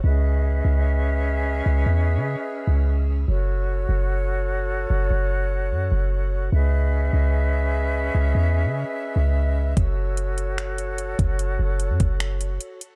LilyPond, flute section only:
\new Staff \with { instrumentName = "Flute section" } { \time 4/4 \key fis \dorian \tempo 4 = 148 <cis' gis' b' dis'' e''>1~ | <cis' gis' b' dis'' e''>1 | <fis' a' cis''>1~ | <fis' a' cis''>1 |
<cis' gis' b' dis'' e''>1~ | <cis' gis' b' dis'' e''>1 | <fis' a' cis''>1~ | <fis' a' cis''>1 | }